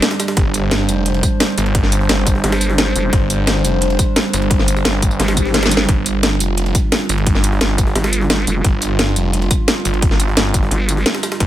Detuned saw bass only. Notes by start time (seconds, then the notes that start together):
0.37 G1
0.89 F1
1.58 G1
2.09 G1
3.13 G1
3.64 F1
4.33 G1
4.85 G1
5.89 G1
6.40 F1
7.09 G1
7.61 G1
8.64 G1
9.16 F1
9.85 G1
10.37 G1
11.40 G1